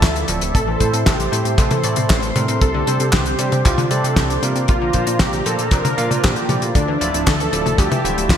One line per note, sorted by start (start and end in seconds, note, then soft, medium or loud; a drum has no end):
0.00 0.25 D2 loud
0.00 0.26 D3 medium
0.00 0.14 D3 medium
0.00 0.53 F3 medium
0.00 0.26 A3 medium
0.00 0.26 E4 medium
0.00 0.26 F4 medium
0.00 0.25 A4 loud
0.00 0.53 D5 medium
0.00 0.26 E5 loud
0.00 2.58 E5 medium
0.00 0.53 A5 medium
0.00 kick loud
0.00 snare loud
0.00 clap medium
0.00 closed hi-hat loud
0.16 0.23 E3 medium
0.16 closed hi-hat medium
0.28 0.40 D1 loud
0.28 0.62 A2 medium
0.28 0.36 F3 loud
0.28 0.62 A3 medium
0.28 0.62 C4 medium
0.28 0.62 E4 medium
0.28 0.62 A4 medium
0.28 closed hi-hat loud
0.41 0.53 D1 loud
0.41 0.53 A3 medium
0.41 closed hi-hat medium
0.55 0.77 A1 loud
0.55 0.66 C3 medium
0.55 2.59 A4 medium
0.55 1.08 A4 loud
0.55 6.71 C5 medium
0.55 4.64 C6 medium
0.55 kick loud
0.55 closed hi-hat medium
0.67 0.80 E3 loud
0.80 1.01 A2 medium
0.80 0.91 A2 medium
0.80 0.87 A3 medium
0.80 1.01 A3 medium
0.80 1.01 C4 medium
0.80 1.01 E4 medium
0.80 1.01 C5 loud
0.80 kick medium
0.80 closed hi-hat medium
0.93 1.04 A2 loud
0.93 1.05 C4 medium
0.93 closed hi-hat medium
1.06 1.29 A1 medium
1.06 1.18 C3 medium
1.06 1.60 G4 loud
1.06 kick loud
1.06 snare loud
1.06 clap loud
1.06 closed hi-hat medium
1.19 1.26 E3 medium
1.19 closed hi-hat medium
1.32 1.43 A2 medium
1.32 1.81 A2 medium
1.32 1.39 A3 loud
1.32 1.81 A3 medium
1.32 1.81 C4 medium
1.32 1.81 E4 medium
1.32 1.81 C5 medium
1.32 closed hi-hat medium
1.45 1.56 A2 medium
1.45 1.57 C4 medium
1.45 closed hi-hat medium
1.58 1.69 A1 loud
1.58 1.70 C3 medium
1.58 2.36 A4 loud
1.58 kick loud
1.58 clap medium
1.58 closed hi-hat medium
1.71 1.83 E3 loud
1.71 closed hi-hat medium
1.71 high tom medium
1.84 1.95 A2 medium
1.84 2.33 A2 medium
1.84 2.33 A3 medium
1.84 1.91 A3 medium
1.84 2.33 C4 medium
1.84 2.33 E4 medium
1.84 2.33 D5 loud
1.84 closed hi-hat medium
1.96 2.08 A2 loud
1.96 2.08 C4 medium
1.96 closed hi-hat medium
1.96 high tom medium
2.10 2.32 A1 loud
2.10 2.21 C3 medium
2.10 kick loud
2.10 snare loud
2.10 clap loud
2.10 closed hi-hat medium
2.23 2.30 E3 medium
2.23 closed hi-hat medium
2.36 2.47 A2 loud
2.36 2.68 C3 medium
2.36 2.68 G3 medium
2.36 2.43 A3 loud
2.36 2.68 C4 medium
2.36 2.68 D4 medium
2.36 2.68 A#4 medium
2.36 closed hi-hat medium
2.36 high tom medium
2.48 2.59 A2 loud
2.48 2.60 C4 medium
2.48 closed hi-hat medium
2.61 2.83 C2 loud
2.61 2.73 C3 medium
2.61 4.66 G4 medium
2.61 3.15 A4 loud
2.61 8.37 D5 medium
2.61 kick loud
2.61 closed hi-hat medium
2.74 2.87 D3 loud
2.87 2.98 C3 medium
2.87 3.08 C3 medium
2.87 2.94 G3 medium
2.87 3.08 G3 medium
2.87 3.08 C4 medium
2.87 3.08 D4 medium
2.87 3.08 C5 medium
2.87 closed hi-hat medium
3.00 3.11 C3 loud
3.00 3.12 C4 medium
3.00 closed hi-hat medium
3.12 3.35 C2 medium
3.12 3.25 C3 medium
3.12 3.66 G4 loud
3.12 kick loud
3.12 snare loud
3.12 clap medium
3.12 closed hi-hat medium
3.26 3.33 D3 medium
3.26 closed hi-hat medium
3.39 3.50 C3 medium
3.39 3.88 C3 medium
3.39 3.46 G3 loud
3.39 3.88 G3 medium
3.39 3.88 C4 medium
3.39 3.88 D4 medium
3.39 3.88 C5 medium
3.39 closed hi-hat loud
3.52 3.63 C3 medium
3.52 3.64 C4 medium
3.52 closed hi-hat medium
3.52 high tom medium
3.65 3.76 C2 loud
3.65 3.77 C3 medium
3.65 3.93 F4 loud
3.65 kick loud
3.65 clap medium
3.65 closed hi-hat medium
3.78 3.90 D3 loud
3.78 closed hi-hat medium
3.78 high tom medium
3.91 4.02 C3 medium
3.91 4.39 C3 medium
3.91 4.39 G3 medium
3.91 3.98 G3 medium
3.91 4.39 C4 medium
3.91 4.39 D4 medium
3.91 4.43 A4 loud
3.91 4.39 D5 loud
3.91 closed hi-hat medium
4.04 4.15 C3 loud
4.04 4.15 C4 medium
4.04 closed hi-hat medium
4.16 4.39 C2 loud
4.16 4.28 C3 medium
4.16 kick loud
4.16 snare loud
4.16 clap medium
4.16 closed hi-hat medium
4.30 4.37 D3 medium
4.30 closed hi-hat medium
4.43 4.75 A#2 medium
4.43 4.54 C3 loud
4.43 4.50 G3 loud
4.43 4.75 A#3 medium
4.43 4.75 D4 medium
4.43 4.75 F4 medium
4.43 4.75 A#4 medium
4.43 closed hi-hat medium
4.55 4.66 C3 loud
4.55 4.67 C4 medium
4.55 closed hi-hat medium
4.68 4.91 A#1 loud
4.68 4.80 C3 medium
4.68 6.73 F4 medium
4.68 5.22 F4 loud
4.68 6.73 A#5 medium
4.68 kick loud
4.68 closed hi-hat medium
4.81 4.94 D3 loud
4.93 5.05 A#2 medium
4.93 5.15 A#2 medium
4.93 5.01 F3 medium
4.93 5.15 A#3 medium
4.93 5.15 D4 medium
4.93 5.15 F4 medium
4.93 5.15 C5 loud
4.93 kick medium
4.93 closed hi-hat medium
5.07 5.18 A#2 loud
5.07 5.19 A#3 medium
5.07 closed hi-hat medium
5.19 5.42 A#1 medium
5.19 5.32 C3 medium
5.19 5.48 G4 loud
5.19 kick loud
5.19 snare loud
5.19 clap medium
5.19 closed hi-hat loud
5.33 5.40 D3 medium
5.33 closed hi-hat medium
5.46 5.95 A#2 medium
5.46 5.57 A#2 medium
5.46 5.53 F3 loud
5.46 5.95 A#3 medium
5.46 5.95 D4 medium
5.46 5.95 F4 medium
5.46 5.74 A4 loud
5.46 5.95 C5 medium
5.46 closed hi-hat medium
5.59 5.70 A#2 medium
5.59 5.71 A#3 medium
5.59 closed hi-hat medium
5.71 5.83 A#1 loud
5.71 5.83 C3 medium
5.71 6.25 A#4 loud
5.71 kick loud
5.71 clap medium
5.71 closed hi-hat medium
5.85 5.97 D3 loud
5.85 closed hi-hat medium
5.85 high tom medium
5.98 6.09 A#2 loud
5.98 6.09 A#2 medium
5.98 6.05 F3 medium
5.98 6.09 A#3 medium
5.98 6.09 D4 medium
5.98 6.09 F4 medium
5.98 6.09 F5 loud
5.98 closed hi-hat medium
6.11 6.22 A#2 medium
6.11 6.46 A#2 medium
6.11 6.46 A#3 medium
6.11 6.22 A#3 medium
6.11 6.46 D4 medium
6.11 6.46 F4 medium
6.11 6.46 C5 medium
6.11 closed hi-hat medium
6.11 high tom medium
6.24 6.35 A#1 medium
6.24 6.35 C3 medium
6.24 6.63 G4 loud
6.24 kick loud
6.24 snare loud
6.24 clap medium
6.24 closed hi-hat medium
6.36 6.43 D3 medium
6.36 closed hi-hat medium
6.49 6.60 A#2 medium
6.49 6.98 D3 medium
6.49 6.56 F3 loud
6.49 6.98 A3 medium
6.49 6.98 E4 medium
6.49 6.98 F4 medium
6.49 6.98 D5 medium
6.49 closed hi-hat medium
6.49 high tom medium
6.62 6.73 A#2 loud
6.62 6.74 A#3 medium
6.62 closed hi-hat medium
6.75 6.97 D2 loud
6.75 6.87 D3 medium
6.75 8.37 F3 medium
6.75 7.29 D4 loud
6.75 8.37 E5 medium
6.75 8.37 A5 medium
6.75 kick loud
6.75 closed hi-hat medium
6.88 7.00 E3 loud
7.01 7.12 D1 medium
7.01 7.22 D3 medium
7.01 7.08 F3 medium
7.01 7.22 A3 medium
7.01 7.22 E4 medium
7.01 7.22 F4 medium
7.01 7.22 D5 loud
7.01 closed hi-hat medium
7.14 7.25 D1 loud
7.14 7.26 A3 medium
7.14 closed hi-hat medium
7.27 7.49 D2 medium
7.27 7.38 D3 medium
7.27 7.80 A4 loud
7.27 kick loud
7.27 snare loud
7.27 clap medium
7.27 closed hi-hat medium
7.40 7.47 E3 medium
7.40 closed hi-hat medium
7.53 7.64 D1 medium
7.53 8.02 D3 medium
7.53 7.60 F3 loud
7.53 8.02 A3 medium
7.53 8.02 E4 medium
7.53 8.02 F4 medium
7.53 8.02 D5 medium
7.53 closed hi-hat medium
7.66 7.77 D1 medium
7.66 7.77 A3 medium
7.66 closed hi-hat medium
7.66 high tom medium
7.78 7.90 D2 loud
7.78 7.90 D3 medium
7.78 8.32 G4 loud
7.78 kick loud
7.78 clap medium
7.78 closed hi-hat medium
7.91 8.04 E3 loud
7.91 closed hi-hat medium
7.91 high tom medium
8.04 8.16 D1 medium
8.04 8.37 D3 medium
8.04 8.11 F3 medium
8.04 8.37 A3 medium
8.04 8.37 E4 medium
8.04 8.37 F4 medium
8.04 8.37 E5 loud
8.04 closed hi-hat medium
8.17 8.29 D1 loud
8.17 8.29 A3 medium
8.17 closed hi-hat medium
8.29 8.37 D2 loud
8.29 8.37 D3 medium
8.29 8.37 F4 loud
8.29 kick loud
8.29 snare loud
8.29 clap medium
8.29 closed hi-hat medium